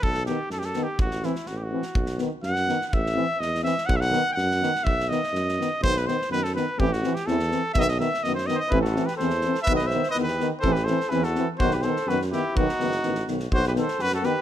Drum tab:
SD |-oo-ooo-|-oooo--o|-oo-oooo|-o--oooo|
BD |o-------|o-------|o-------|o-------|

SD |-oo-oooo|-oooooo-|-oooooo-|-oooooo-|
BD |o-------|o-------|o-------|o-------|

SD |-oooooo-|-ooooooo|-oooooo-|-oooooo-|
BD |o-------|o-------|o-------|o-------|

SD |-oooooo-|-ooooooo|-oooooo-|
BD |o-------|o-------|o-------|